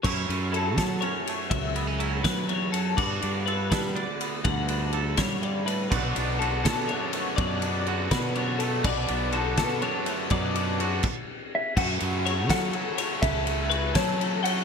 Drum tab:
CC |x-----|------|x-----|------|
RD |-xxxxx|xxxxxx|-xxxxx|xxxxxx|
SD |---o--|---o--|---o--|---o--|
BD |o--o--|o--o--|o--o--|o--o--|

CC |x-----|------|x-----|---x--|
RD |-xxxxx|xxxxxx|-xxxxx|xxx---|
SD |---o--|---o--|---o--|------|
BD |o--o--|o--o--|o--o--|o--o--|

CC |x-----|------|
RD |-xxxxx|xxxxxx|
SD |---o--|---o--|
BD |o--o--|o--o--|